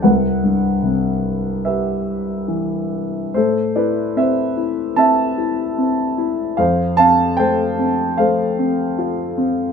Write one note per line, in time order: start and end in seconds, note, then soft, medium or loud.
0.02 3.30 C2 soft
0.02 1.61 B4 soft
0.02 1.60 F#5 medium
0.43 2.02 G2 soft
0.83 2.45 C3 soft
1.65 3.30 G4 soft
1.65 3.30 B4 soft
1.65 2.45 E5 medium
2.48 3.31 E3 soft
3.34 6.55 A2 medium
3.34 3.73 A4 medium
3.34 3.76 C5 medium
3.76 4.55 E4 soft
3.76 4.14 B4 medium
3.76 4.17 D5 medium
4.16 4.95 C4 soft
4.16 4.95 C5 soft
4.16 4.97 E5 medium
4.57 5.36 E4 soft
4.96 5.77 C4 soft
4.96 6.15 E5 medium
4.96 6.14 A5 medium
5.38 6.17 E4 soft
5.78 6.56 C4 soft
6.18 6.57 E4 soft
6.57 9.72 F2 medium
6.57 6.96 C5 medium
6.57 6.97 F5 medium
6.97 7.78 C4 soft
6.97 7.36 F5 medium
6.97 7.39 A5 medium
7.37 8.18 A3 soft
7.37 8.15 C5 medium
7.37 8.21 G5 medium
7.79 8.57 C4 soft
8.18 9.72 A3 medium
8.18 9.34 C5 medium
8.18 9.33 F5 medium
8.59 9.36 C4 soft
8.98 9.72 F4 medium
9.38 9.72 C4 soft